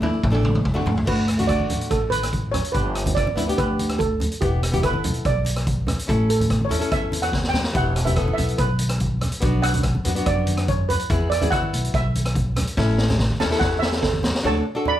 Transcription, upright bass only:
0.24 A1
0.66 E2
0.86 D2
1.08 D2
1.70 A1
1.91 A1
2.75 G1
3.38 D2
3.58 D2
4.42 E1
5.05 B1
5.25 B1
6.09 A1
6.71 E2
6.92 E2
7.75 E1
8.38 B1
8.59 B1
9.43 B1
10.06 F#2
10.27 F#2
11.10 E2
11.73 B1
11.94 B1
12.78 A1
13.40 E2
13.61 E2
14.44 D2

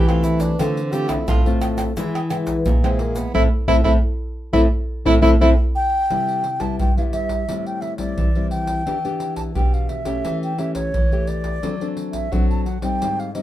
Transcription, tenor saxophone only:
0.08 F4
0.24 E4
0.40 D4
0.60 C4
0.92 G4
1.09 E4
1.29 F4
2.84 C4
3.00 A#3
3.16 B3
3.35 E4
3.68 E4
3.85 E4
4.53 E4
5.06 E4
5.23 E4
5.41 E4

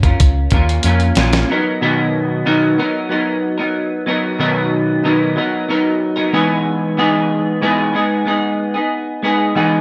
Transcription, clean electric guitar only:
0.04 C#4 F4 A#4
0.52 A#3 C#4 F4 A#4
0.84 A#3 C#4 F4 A#4
1.17 A#3 C#4 F4 A#4
1.50 F#3 B3 D#4 A#4
1.81 B2 D#3 F#3 B3 D#4 A#4
2.45 B2 D#3 F#3 B3 D#4 A#4
2.77 F#3 B3 D#4 A#4
3.09 F#3 B3 D#4 A#4
3.58 F#3 B3 D#4 A#4
4.06 F#3 B3 D#4 A#4
4.39 B2 D#3 F#3 B3 D#4 A#4
5.03 B2 D#3 F#3 B3 D#4 A#4
5.36 F#3 B3 D#4 A#4
5.68 F#3 B3 D#4 A#4
6.16 F#3 B3 D#4 A#4
6.33 E3 G#3 B3 D#4 G#4
6.97 E3 G#3 B3 D#4 G#4
7.62 E3 G#3 B3 D#4 G#4
7.94 G#3 B3 D#4 G#4
8.26 G#3 B3 D#4 G#4
8.74 B3 D#4 G#4
9.23 G#3 B3 D#4 G#4
9.55 E3 G#3 B3 D#4 G#4

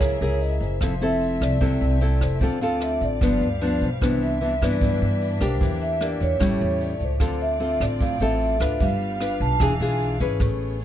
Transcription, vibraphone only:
Already playing: C#5
0.42 D#5
0.63 C5
1.03 E5
1.42 D5
2.23 C5
2.62 F5
2.83 E5
3.04 D5
3.65 D5
3.84 C5
4.23 E5
4.64 D5
5.44 C5
5.83 E5
6.02 D5
6.22 C#5
6.83 D5
7.04 C5
7.42 E5
7.82 D5
8.02 F5
8.22 E5
8.81 F5
9.42 A5
9.61 G#5

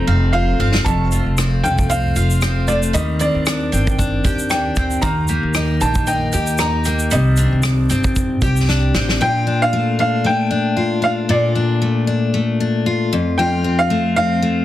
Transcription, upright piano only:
0.33 F5
0.84 A5
1.63 G5
1.90 F5
2.68 D5
2.94 D#5
3.21 D5
4.50 G5
5.02 A#5
5.81 A5
6.07 G5
6.60 A#5
7.12 D#5
9.22 G5
9.62 F5
10.00 F5
10.26 G5
11.04 F5
11.30 D5
13.38 G5
13.79 F5
14.16 F5

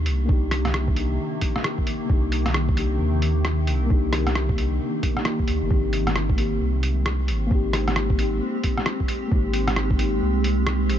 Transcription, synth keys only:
Already playing: A#3 D4 D#4 G4
0.25 A#3 D4
0.30 D#4 G4
0.93 A#3 D4
0.98 D#4 G4
2.06 A#3 D4
2.11 D#4 G4
2.76 A#3 D4 D#4 G4
3.86 A#3 D4
3.91 D#4 G4
4.54 A#3 D4
4.59 D#4 G4
5.14 A#3 D4 D#4 G4
5.24 A#3 D4 D#4 G4
5.67 A#3 C4
5.72 D#4 G4
6.36 A#3 C4 D#4 G4
7.47 A#3 C4
7.52 D#4 G4
8.14 A#3 C4
8.20 D#4 G4
9.27 A#3 C4
9.33 D#4 G4
9.97 A#3 C4 D#4
10.02 G4

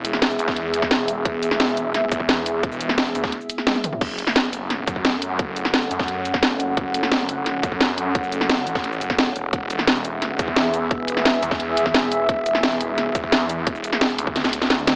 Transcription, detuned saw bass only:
Already playing: E1
0.22 E1
0.39 E2
0.91 E1
1.25 E1
1.60 E1
2.12 E2
2.63 E1
2.98 E1
3.15 D2
4.01 F#1
4.36 F#1
4.87 F#2
5.39 F#1
5.74 F#1
5.91 F#2
6.43 F#1
6.77 F#1
7.12 F#1
7.63 F#2
8.15 F#1
8.49 F#1
8.67 A1
9.01 F#1
9.36 E1
9.53 E1
9.87 E1
10.39 E2
10.91 E1
11.25 E1
11.43 E2
11.94 E1
12.29 E1
12.63 E1
13.15 E2
13.67 E1
14.01 E1
14.18 D2

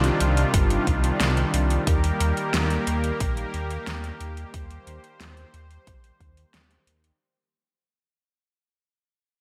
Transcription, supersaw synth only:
Already playing: C3 D#3 G3 D4 F4
1.87 A#3 G4 A#4
4.54 C5

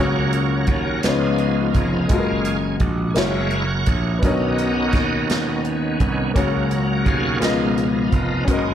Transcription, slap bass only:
Already playing: C#2
0.68 D#2
1.04 C#2
1.75 F1
2.10 F#1
2.80 A#1
3.16 F#1
3.88 A#1
4.23 B1
4.94 D#2
6.00 C2
6.36 C#2
7.06 D#2
7.42 C#2
8.13 F1
8.48 F#1

